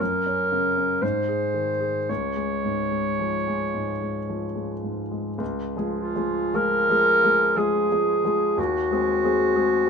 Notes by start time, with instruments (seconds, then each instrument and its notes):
0.00 grand piano F#2, clarinet A#4
0.26 grand piano C#4
0.52 grand piano C#3
0.78 grand piano C#4
1.02 grand piano G#2, clarinet C5
1.28 grand piano G#4
1.54 grand piano D#3
1.81 grand piano G#4
2.09 grand piano C#2, clarinet C#5
2.36 grand piano G#3
2.65 grand piano G#2
2.91 grand piano G#3
3.20 grand piano F3
3.47 grand piano G#3
3.74 grand piano G#2
4.01 grand piano G#3
4.29 grand piano F3
4.56 grand piano G#3
4.83 grand piano G#2
5.11 grand piano G#3
5.38 grand piano C#2
5.77 grand piano F3 G#3 G#4
5.98 clarinet F4
6.16 grand piano F3 G#3 G#4
6.54 grand piano F3 G#3 G#4, clarinet A#4
6.90 grand piano F3 G#3 G#4
7.24 grand piano F3 G#3 G#4
7.57 grand piano F3 G#3 G#4, clarinet G#4
7.92 grand piano F3 G#3 G#4
8.24 grand piano F3 G#3 G#4
8.57 grand piano D#2, clarinet F#4
8.91 grand piano G#3 C4 G#4
9.24 grand piano G#3 C4 G#4
9.55 grand piano G#3 C4 G#4
9.86 grand piano G#3